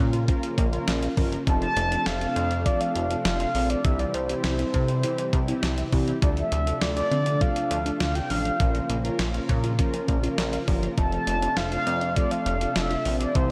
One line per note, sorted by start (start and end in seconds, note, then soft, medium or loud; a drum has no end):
0.00 0.30 A#2 loud
0.00 1.45 C#3 medium
0.00 1.43 F3 medium
0.00 1.45 A#3 medium
0.00 0.22 C#4 medium
0.00 0.22 F4 medium
0.00 1.45 F4 medium
0.00 0.22 A#4 loud
0.13 0.23 F4 medium
0.13 closed hi-hat soft
0.28 0.37 F3 medium
0.28 0.67 C#4 medium
0.28 0.67 F4 medium
0.28 0.67 A#4 loud
0.28 kick loud
0.28 closed hi-hat medium
0.43 0.52 F3 medium
0.43 closed hi-hat medium
0.58 0.79 A#1 medium
0.58 0.67 A#3 medium
0.58 kick loud
0.58 closed hi-hat medium
0.73 1.11 C#4 medium
0.73 0.82 F4 medium
0.73 1.11 F4 medium
0.73 1.11 A#4 loud
0.73 closed hi-hat medium
0.88 1.09 A#1 loud
0.88 0.97 F5 loud
0.88 snare loud
0.88 closed hi-hat medium
1.02 1.12 F5 medium
1.02 closed hi-hat medium
1.17 1.38 G1 medium
1.17 1.27 F3 medium
1.17 1.43 C#4 loud
1.17 1.43 F4 medium
1.17 1.43 A#4 loud
1.17 kick medium
1.17 open hi-hat medium
1.32 1.41 F3 medium
1.32 closed hi-hat medium
1.47 1.68 F1 loud
1.47 8.56 C3 medium
1.47 1.56 F3 medium
1.47 3.82 F3 medium
1.47 3.82 A3 medium
1.47 1.85 C4 medium
1.47 3.82 D4 medium
1.47 1.85 F4 medium
1.47 1.85 A4 medium
1.47 1.61 A5 loud
1.47 kick loud
1.47 closed hi-hat medium
1.62 1.71 F3 medium
1.62 2.08 A5 loud
1.62 closed hi-hat soft
1.77 1.97 F1 loud
1.77 1.86 A3 medium
1.77 closed hi-hat medium
1.92 2.17 C4 medium
1.92 2.01 D4 medium
1.92 2.17 F4 medium
1.92 2.17 A4 medium
1.92 closed hi-hat medium
2.06 2.27 F1 loud
2.06 2.16 F4 medium
2.06 2.21 F5 loud
2.06 snare loud
2.06 closed hi-hat medium
2.21 2.60 C4 medium
2.21 2.30 F4 medium
2.21 2.60 F4 medium
2.21 2.60 A4 medium
2.21 2.67 F5 loud
2.21 closed hi-hat medium
2.36 2.67 F2 loud
2.36 2.45 C4 medium
2.36 closed hi-hat medium
2.51 2.60 D4 medium
2.51 closed hi-hat soft
2.66 2.75 F3 medium
2.66 3.04 C4 medium
2.66 3.04 F4 medium
2.66 3.04 A4 medium
2.66 2.82 D5 loud
2.66 kick medium
2.66 closed hi-hat medium
2.81 2.90 F3 medium
2.81 3.25 F5 loud
2.81 closed hi-hat medium
2.96 3.16 F1 medium
2.96 3.05 A3 medium
2.96 closed hi-hat medium
3.10 3.49 C4 medium
3.10 3.20 D4 medium
3.10 3.49 F4 medium
3.10 3.49 A4 medium
3.10 closed hi-hat medium
3.25 3.46 F1 loud
3.25 3.35 F4 medium
3.25 3.71 F5 loud
3.25 snare loud
3.25 closed hi-hat medium
3.40 3.49 F4 medium
3.40 closed hi-hat medium
3.55 3.76 A#1 medium
3.55 3.64 F3 medium
3.55 3.80 C4 medium
3.55 3.80 F4 medium
3.55 3.80 A4 medium
3.55 open hi-hat medium
3.70 3.79 F3 medium
3.70 3.86 D5 medium
3.70 closed hi-hat medium
3.85 4.05 C2 loud
3.85 6.20 E3 medium
3.85 3.94 E3 medium
3.85 6.20 G3 medium
3.85 4.23 C4 medium
3.85 4.23 E4 medium
3.85 6.20 E4 medium
3.85 4.23 G4 medium
3.85 4.01 E5 loud
3.85 kick loud
3.85 closed hi-hat medium
3.99 4.09 E3 medium
3.99 4.16 D5 medium
3.99 closed hi-hat soft
4.14 4.35 C2 loud
4.14 4.24 G3 medium
4.14 5.93 C5 medium
4.14 closed hi-hat medium
4.29 4.55 C4 medium
4.29 4.55 E4 medium
4.29 4.38 E4 medium
4.29 4.55 G4 medium
4.29 closed hi-hat medium
4.44 4.65 C2 loud
4.44 4.53 E5 loud
4.44 snare loud
4.44 closed hi-hat medium
4.59 4.97 C4 medium
4.59 4.97 E4 medium
4.59 4.97 A4 medium
4.59 4.68 E5 medium
4.59 closed hi-hat medium
4.74 5.05 C3 loud
4.74 4.83 C4 medium
4.74 kick medium
4.74 closed hi-hat medium
4.88 4.98 E4 medium
4.88 closed hi-hat soft
5.03 5.13 E3 medium
5.03 5.42 C4 loud
5.03 5.42 E4 medium
5.03 5.42 G4 loud
5.03 closed hi-hat medium
5.18 5.28 E3 medium
5.18 closed hi-hat medium
5.33 5.54 C2 loud
5.33 5.42 G3 medium
5.33 kick medium
5.33 closed hi-hat medium
5.48 5.86 C4 medium
5.48 5.57 E4 medium
5.48 5.86 E4 medium
5.48 5.86 G4 loud
5.48 closed hi-hat medium
5.63 5.84 C2 loud
5.63 5.72 E5 loud
5.63 snare loud
5.63 closed hi-hat medium
5.78 5.87 E5 medium
5.78 closed hi-hat medium
5.92 6.13 C2 medium
5.92 6.02 E3 medium
5.92 6.18 C4 loud
5.92 6.18 E4 medium
5.92 6.18 G4 loud
5.92 kick medium
5.92 open hi-hat medium
6.08 6.17 E3 medium
6.08 closed hi-hat medium
6.22 6.43 D2 loud
6.22 6.32 F3 loud
6.22 13.31 F3 medium
6.22 8.58 A3 medium
6.22 8.58 D4 medium
6.22 6.61 D4 medium
6.22 6.61 F4 medium
6.22 6.61 A4 medium
6.22 6.29 D5 medium
6.22 kick loud
6.22 closed hi-hat medium
6.37 6.46 F3 medium
6.37 6.83 E5 loud
6.37 closed hi-hat soft
6.52 6.73 D2 loud
6.52 6.61 A3 medium
6.52 closed hi-hat medium
6.67 6.92 D4 medium
6.67 6.76 D4 medium
6.67 6.92 F4 medium
6.67 6.92 A4 medium
6.67 closed hi-hat medium
6.81 7.03 D2 loud
6.81 6.91 F4 medium
6.81 6.96 D5 medium
6.81 snare loud
6.81 closed hi-hat medium
6.96 7.35 D4 medium
6.96 7.35 F4 medium
6.96 7.06 F4 medium
6.96 7.35 A4 medium
6.96 7.43 D5 loud
6.96 closed hi-hat medium
7.11 7.43 D3 loud
7.11 7.21 C4 medium
7.11 closed hi-hat medium
7.26 7.36 D4 medium
7.26 closed hi-hat medium
7.41 7.50 F3 medium
7.41 7.79 D4 medium
7.41 7.79 F4 medium
7.41 7.79 A4 medium
7.41 8.00 F5 loud
7.41 kick loud
7.41 closed hi-hat medium
7.56 7.65 F3 medium
7.56 closed hi-hat medium
7.71 7.92 D2 loud
7.71 7.80 A3 medium
7.71 closed hi-hat medium
7.86 8.24 D4 medium
7.86 7.95 D4 medium
7.86 8.24 F4 medium
7.86 8.24 A4 medium
7.86 closed hi-hat soft
8.00 8.21 D2 loud
8.00 8.10 F4 loud
8.00 8.14 F5 loud
8.00 snare loud
8.00 closed hi-hat medium
8.15 8.25 F4 medium
8.15 8.32 G5 loud
8.15 closed hi-hat medium
8.30 8.51 A1 medium
8.30 8.40 F3 medium
8.30 8.56 D4 medium
8.30 8.56 F4 medium
8.30 8.56 A4 medium
8.30 8.90 F5 loud
8.30 open hi-hat medium
8.45 8.54 F3 medium
8.45 closed hi-hat medium
8.60 8.81 A#1 loud
8.60 10.95 C#3 medium
8.60 8.69 F3 loud
8.60 10.95 A#3 medium
8.60 8.98 C#4 medium
8.60 8.98 F4 medium
8.60 10.95 F4 medium
8.60 8.98 A#4 medium
8.60 kick loud
8.60 closed hi-hat medium
8.75 8.84 F3 medium
8.75 closed hi-hat soft
8.90 9.10 A#1 loud
8.90 8.99 A#3 medium
8.90 closed hi-hat medium
9.04 9.30 C#4 medium
9.04 9.30 F4 medium
9.04 9.14 F4 medium
9.04 9.30 A#4 loud
9.04 closed hi-hat medium
9.19 9.40 A#1 loud
9.19 9.29 F5 medium
9.19 snare loud
9.19 closed hi-hat medium
9.34 9.72 C#4 medium
9.34 9.72 F4 medium
9.34 9.72 A#4 loud
9.34 9.43 F5 medium
9.34 closed hi-hat medium
9.49 9.80 A#2 loud
9.49 9.58 C#4 medium
9.49 kick medium
9.49 closed hi-hat medium
9.64 9.73 F4 medium
9.64 closed hi-hat medium
9.79 9.88 F3 medium
9.79 10.17 C#4 medium
9.79 10.17 F4 medium
9.79 10.17 A#4 loud
9.79 kick medium
9.79 closed hi-hat medium
9.94 10.03 F3 medium
9.94 closed hi-hat medium
10.08 10.29 A#1 medium
10.08 10.18 A#3 medium
10.08 kick loud
10.08 closed hi-hat medium
10.23 10.62 C#4 medium
10.23 10.62 F4 medium
10.23 10.32 F4 medium
10.23 10.62 A#4 loud
10.23 closed hi-hat medium
10.38 10.59 A#1 loud
10.38 10.47 F5 loud
10.38 snare loud
10.38 closed hi-hat medium
10.53 10.62 F5 medium
10.53 closed hi-hat medium
10.68 10.89 G1 medium
10.68 10.77 F3 medium
10.68 10.93 C#4 medium
10.68 10.93 F4 medium
10.68 10.93 A#4 loud
10.68 kick medium
10.68 open hi-hat medium
10.83 10.92 F3 medium
10.83 closed hi-hat medium
10.98 11.18 F1 loud
10.98 13.51 C3 medium
10.98 11.07 F3 loud
10.98 13.33 A3 medium
10.98 11.36 C4 medium
10.98 13.33 D4 medium
10.98 11.36 F4 medium
10.98 11.36 A4 medium
10.98 11.11 A5 loud
10.98 kick loud
10.98 closed hi-hat medium
11.12 11.22 F3 medium
11.12 11.59 A5 loud
11.12 closed hi-hat soft
11.27 11.48 F1 loud
11.27 11.37 A3 medium
11.27 closed hi-hat medium
11.42 11.68 C4 medium
11.42 11.51 D4 medium
11.42 11.68 F4 medium
11.42 11.68 A4 medium
11.42 closed hi-hat medium
11.57 11.78 F1 loud
11.57 11.66 F4 medium
11.57 11.71 F5 loud
11.57 snare loud
11.57 closed hi-hat medium
11.72 12.10 C4 medium
11.72 12.10 F4 medium
11.72 11.81 F4 medium
11.72 12.10 A4 medium
11.72 12.13 F5 loud
11.72 closed hi-hat medium
11.87 12.18 F2 loud
11.87 11.96 C4 medium
11.87 closed hi-hat medium
12.01 12.11 D4 medium
12.01 closed hi-hat soft
12.16 12.26 F3 medium
12.16 12.55 C4 medium
12.16 12.55 F4 medium
12.16 12.55 A4 medium
12.16 12.33 D5 loud
12.16 kick loud
12.16 closed hi-hat medium
12.31 12.41 F3 medium
12.31 12.75 F5 loud
12.31 closed hi-hat medium
12.46 12.67 F1 loud
12.46 12.55 A3 medium
12.46 closed hi-hat medium
12.61 12.99 C4 medium
12.61 12.70 D4 medium
12.61 12.99 F4 medium
12.61 12.99 A4 medium
12.61 closed hi-hat medium
12.76 12.97 F1 loud
12.76 12.85 F4 loud
12.76 13.17 E5 loud
12.76 snare loud
12.76 closed hi-hat medium
12.91 13.00 F4 medium
12.91 closed hi-hat medium
13.05 13.26 A#1 medium
13.05 13.15 F3 medium
13.05 13.31 C4 medium
13.05 13.31 F4 medium
13.05 13.31 C5 medium
13.05 open hi-hat medium
13.20 13.30 F3 medium
13.20 13.37 D5 medium
13.20 closed hi-hat medium
13.35 13.51 C2 loud
13.35 13.51 E3 medium
13.35 13.44 E3 medium
13.35 13.51 G3 medium
13.35 13.51 C4 medium
13.35 13.51 E4 medium
13.35 13.51 G4 medium
13.35 13.49 C5 medium
13.35 kick loud
13.35 closed hi-hat medium